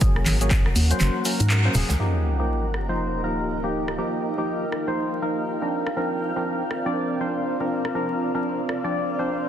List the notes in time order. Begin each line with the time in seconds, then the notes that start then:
Already playing: A#3 C#4 F#4 A#4 F#5
0.01 G#1 F#3 A#3 C#4 G#4, kick, closed hi-hat, shaker
0.16 cross-stick
0.26 G#1, clap, open hi-hat, high conga, shaker
0.41 F#3 A#3 C#4 G#4, closed hi-hat, shaker
0.50 kick, snare, clap, closed hi-hat, shaker
0.66 cross-stick, high conga
0.76 D#2, open hi-hat, shaker
0.90 F#3 A#3 C#4 C5, closed hi-hat, shaker
1.00 F#1, clap, closed hi-hat, high conga, shaker
1.25 F#3 A#3 C#4 A#4, open hi-hat, shaker
1.40 G#2, closed hi-hat, high conga, shaker
1.50 snare, clap, closed hi-hat, shaker
1.65 F#3 A#3 C#4 C5
1.74 D#1 F#3 A#3 C#4 G#4, snare, open hi-hat, low conga, shaker
1.89 C#2, snare, closed hi-hat, high conga, shaker
1.99 F3 A#3 D#4 F4 G4 D#5, sub drop
2.39 F3 A#3 D#4 G4 F5
2.74 cross-stick
2.89 F3 A#3 D#4 C5
3.23 F3 A#3 D#4 A#4
3.41 G5
3.63 F3 A#3 D#4 G4
3.88 cross-stick
3.98 F3 A#3 D#4 G4
4.37 F3 A#3 D#4 G4
4.72 cross-stick
4.87 F3 A#3 D#4 C5
5.22 F3 A#3 D#4 A#4
5.61 F3 C4 D4 A#4
5.72 C4 A#4 D5
5.87 cross-stick
5.96 F3 C4 D4 A#4
6.36 F3 C4 D4 A#4
6.67 D5, cross-stick
6.85 F3 C4 D4 D5
7.20 F3 C4 D4 C5
7.60 F3 C4 D4 A#4
7.70 C5
7.85 cross-stick
7.94 F3 C4 D4 A#4
8.34 F3 C4 D4 A#4
8.69 cross-stick
8.84 F3 C4 D4 D5
9.18 F3 C4 D4 C5